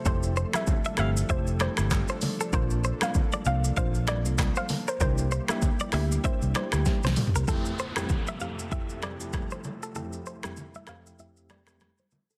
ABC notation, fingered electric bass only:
X:1
M:4/4
L:1/16
Q:"Swing 16ths" 1/4=97
K:F
V:1 name="Fingered electric bass" clef=bass
F,,,3 z3 G,,,2 F,,,3 G,,,2 z3 | B,,,3 z3 C,,2 B,,,3 C,,2 z3 | C,,3 z3 D,,2 z C,, z D,, z C,, z C,, | z16 |
z16 |]